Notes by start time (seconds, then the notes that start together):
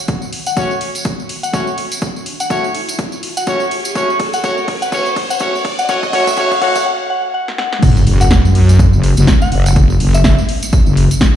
0.08 kick, closed hi-hat, tambourine, riser
0.22 tambourine
0.33 open hi-hat
0.46 F#5, closed hi-hat, tambourine
0.57 A3 C#4 F#4 C#5, kick, closed hi-hat, tambourine
0.71 tambourine
0.81 open hi-hat
0.95 closed hi-hat, tambourine
1.05 kick, closed hi-hat, tambourine
1.20 tambourine
1.29 open hi-hat
1.43 F#5, closed hi-hat, tambourine
1.53 A3 C#4 F#4 C#5, kick, closed hi-hat, tambourine
1.67 tambourine
1.78 open hi-hat
1.92 closed hi-hat, tambourine
2.02 kick, closed hi-hat
2.16 tambourine
2.26 open hi-hat
2.40 F#5, closed hi-hat, tambourine
2.50 A3 C#4 F#4 C#5, kick, closed hi-hat, tambourine
2.64 tambourine
2.75 open hi-hat
2.89 closed hi-hat, tambourine
2.99 kick, closed hi-hat, tambourine
3.12 tambourine
3.23 open hi-hat
3.37 F#5, closed hi-hat, tambourine
3.47 A3 C#4 F#4 C#5, kick, closed hi-hat, tambourine
3.60 tambourine
3.71 open hi-hat
3.85 closed hi-hat, tambourine
3.95 A3 C#4 F#4 C#5, kick, closed hi-hat, tambourine
4.10 tambourine
4.20 kick, open hi-hat
4.33 F#5, closed hi-hat, tambourine
4.44 A3 C#4 F#4 C#5, kick, closed hi-hat, tambourine
4.58 tambourine
4.68 kick, open hi-hat
4.82 F#5, closed hi-hat, tambourine
4.92 A3 C#4 F#4 C#5, kick, closed hi-hat, tambourine
5.06 tambourine
5.16 kick, open hi-hat
5.30 F#5, closed hi-hat, tambourine
5.40 A3 C#4 F#4 C#5, kick, closed hi-hat, tambourine
5.56 tambourine
5.65 kick, open hi-hat
5.79 F#5, closed hi-hat, tambourine
5.89 A3 C#4 F#4 C#5 F#5, kick, closed hi-hat, tambourine
6.03 kick, tambourine
6.13 A3 C#4 F#4 C#5 F#5, kick, open hi-hat
6.27 kick, closed hi-hat, tambourine
6.37 A3 C#4 F#4 C#5 F#5, kick, closed hi-hat, tambourine
6.51 kick, tambourine
6.61 A3 C#4 F#4 C#5 F#5, kick, open hi-hat
6.75 kick, closed hi-hat, tambourine
6.86 F#5
7.10 F#5
7.34 F#5
7.48 snare
7.58 F#5, snare
7.72 snare
7.82 F#1, kick, closed hi-hat, crash, tambourine, sub drop
7.97 tambourine
8.07 F#1, open hi-hat
8.21 F#5, closed hi-hat, tambourine
8.31 kick, snare, closed hi-hat, tambourine
8.45 F#2, tambourine
8.55 open hi-hat
8.69 closed hi-hat, tambourine
8.79 kick, closed hi-hat, tambourine
8.93 F#1, tambourine
9.03 open hi-hat
9.17 F#1, closed hi-hat, tambourine
9.27 kick, snare, closed hi-hat, tambourine
9.41 F#5, tambourine
9.52 F#1, open hi-hat
9.66 closed hi-hat, tambourine
9.76 kick, closed hi-hat, tambourine
9.90 tambourine
10.00 F#1, open hi-hat
10.14 E5, closed hi-hat, tambourine
10.24 E5, kick, snare, closed hi-hat, tambourine
10.38 tambourine
10.49 open hi-hat
10.63 closed hi-hat, tambourine
10.73 kick, closed hi-hat, tambourine
10.86 F#1, tambourine
10.97 open hi-hat
11.11 closed hi-hat, tambourine
11.21 kick, snare, closed hi-hat, tambourine